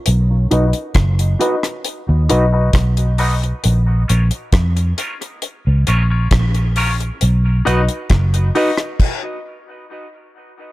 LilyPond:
<<
  \new Staff \with { instrumentName = "Clean electric guitar" } { \time 4/4 \key ces \lydian \tempo 4 = 67 r8 <dis' fis' b' dis''>8 r8 <dis' fis' b' dis''>8 r8 <dis' fis' b' dis''>8 r8 <dis' fis' b' dis''>8 | r8 <des' f' bes' des''>8 r8 <des' f' bes' des''>8 r8 <des' f' bes' des''>8 r8 <des' f' bes' des''>8 | r8 <dis' fis' b' dis''>8 r8 <dis' fis' b' dis''>8 r2 | }
  \new Staff \with { instrumentName = "Grand piano" } { \time 4/4 \key ces \lydian r8 <dis' fis' b' dis''>16 r8. <dis' fis' b' dis''>16 r8. <dis' fis' b' dis''>16 <dis' fis' b' dis''>16 r8 <dis' fis' b' dis''>16 r16 | r8 <des' f' bes' des''>16 r8. <des' f' bes' des''>16 r8. <des' f' bes' des''>16 <des' f' bes' des''>16 r8 <des' f' bes' des''>16 r16 | r8 <dis' fis' b' dis''>16 r8. <dis' fis' b' dis''>16 r2 r16 | }
  \new Staff \with { instrumentName = "Fingered electric bass" } { \clef bass \time 4/4 \key ces \lydian b,,8 b,,16 r16 fis,,8 r8. dis,16 b,,8 b,,4 | bes,,8 bes,,16 r16 f,8 r8. des,16 bes,,8 bes,,4 | b,,8 b,,16 r16 fis,,8 r2 r8 | }
  \new DrumStaff \with { instrumentName = "Drums" } \drummode { \time 4/4 hh8 hh16 hh16 <hh bd ss>16 hh16 hh16 <hh ss>16 hh8 hh8 <hh bd ss>16 hh16 hho16 hh16 | hh8 hh16 hh16 <hh bd ss>16 hh16 hh16 hh16 hh8 hh8 <hh bd ss>16 hh16 hho16 hh16 | hh8 hh16 hh16 <hh bd ss>16 hh16 hho16 <hh ss>16 <cymc bd>4 r4 | }
>>